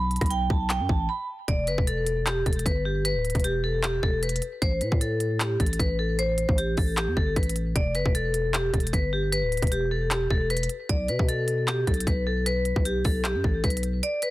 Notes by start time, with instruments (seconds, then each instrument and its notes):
Already playing: 808-style bass B1, vibraphone B5
0.11 closed hi-hat
0.16 closed hi-hat
0.21 808-style bass B1, kick, cross-stick, closed hi-hat
0.26 closed hi-hat
0.30 vibraphone G5, closed hi-hat
0.50 808-style bass B1, vibraphone A5, kick
0.70 vibraphone G5, clap, closed hi-hat
0.80 808-style bass F#2
0.89 808-style bass A1, vibraphone A5, kick
1.09 vibraphone B5
1.48 808-style bass E1, vibraphone D5, kick, closed hi-hat
1.67 808-style bass F#1, vibraphone B4, closed hi-hat
1.78 808-style bass E1, kick
1.87 vibraphone A4, closed hi-hat
2.07 closed hi-hat
2.26 vibraphone G4, clap, closed hi-hat
2.46 808-style bass E1, vibraphone A4, kick, closed hi-hat
2.53 closed hi-hat
2.59 closed hi-hat
2.66 808-style bass G1, vibraphone B4, kick, closed hi-hat
2.85 vibraphone G4
3.05 vibraphone B4, closed hi-hat
3.15 808-style bass D1
3.25 closed hi-hat
3.30 closed hi-hat
3.35 808-style bass E1, kick, closed hi-hat
3.40 closed hi-hat
3.44 vibraphone G4, closed hi-hat
3.64 vibraphone A4
3.83 vibraphone G4, clap, closed hi-hat
4.03 808-style bass E1, vibraphone A4, kick
4.23 vibraphone B4, closed hi-hat
4.29 closed hi-hat
4.36 closed hi-hat
4.42 closed hi-hat
4.62 808-style bass A1, vibraphone C5, kick, closed hi-hat
4.81 808-style bass A2, vibraphone B4, closed hi-hat
4.92 808-style bass A2, kick
5.01 vibraphone A4, closed hi-hat
5.20 closed hi-hat
5.40 vibraphone G4, clap, closed hi-hat
5.60 808-style bass A1, vibraphone A4, kick, closed hi-hat
5.66 closed hi-hat
5.73 closed hi-hat
5.79 808-style bass A1, vibraphone B4, kick, closed hi-hat
5.99 vibraphone A4
6.19 vibraphone C5, closed hi-hat
6.38 closed hi-hat
6.49 808-style bass A1, kick
6.58 vibraphone G4, closed hi-hat
6.77 808-style bass A1, vibraphone A4, kick, open hi-hat
6.97 vibraphone G4, clap, closed hi-hat
7.08 808-style bass E2
7.17 808-style bass G1, vibraphone A4, kick
7.36 808-style bass A1, vibraphone B4, kick, closed hi-hat
7.43 closed hi-hat
7.49 closed hi-hat
7.56 closed hi-hat
7.76 808-style bass E1, vibraphone D5, kick, closed hi-hat
7.95 808-style bass F#1, vibraphone B4, closed hi-hat
8.06 808-style bass E1, kick
8.15 vibraphone A4, closed hi-hat
8.34 closed hi-hat
8.54 vibraphone G4, clap, closed hi-hat
8.74 808-style bass E1, vibraphone A4, kick, closed hi-hat
8.80 closed hi-hat
8.87 closed hi-hat
8.93 808-style bass G1, vibraphone B4, kick, closed hi-hat
9.13 vibraphone G4
9.32 vibraphone B4, closed hi-hat
9.43 808-style bass D1
9.52 closed hi-hat
9.57 closed hi-hat
9.62 808-style bass E1, kick, closed hi-hat
9.67 closed hi-hat
9.72 vibraphone G4, closed hi-hat
9.91 vibraphone A4
10.11 vibraphone G4, clap, closed hi-hat
10.30 808-style bass E1, vibraphone A4, kick
10.50 vibraphone B4, closed hi-hat
10.57 closed hi-hat
10.63 closed hi-hat
10.69 closed hi-hat
10.89 808-style bass B1, vibraphone D5, kick, closed hi-hat
11.08 808-style bass B2, vibraphone B4, closed hi-hat
11.19 808-style bass B2, kick
11.29 vibraphone A4, closed hi-hat
11.48 closed hi-hat
11.68 vibraphone G4, clap, closed hi-hat
11.87 808-style bass B1, vibraphone A4, kick, closed hi-hat
11.94 closed hi-hat
12.00 closed hi-hat
12.07 808-style bass B1, vibraphone B4, kick, closed hi-hat
12.27 vibraphone A4
12.46 vibraphone B4, closed hi-hat
12.65 closed hi-hat
12.76 808-style bass B1, kick
12.85 vibraphone G4, closed hi-hat
13.05 808-style bass B1, vibraphone A4, kick, open hi-hat
13.24 vibraphone G4, clap, closed hi-hat
13.35 808-style bass F#2
13.44 808-style bass A1, vibraphone A4, kick
13.64 808-style bass B1, vibraphone B4, kick, closed hi-hat
13.70 closed hi-hat
13.77 closed hi-hat
13.83 closed hi-hat
14.03 vibraphone D5, closed hi-hat
14.22 vibraphone B4, closed hi-hat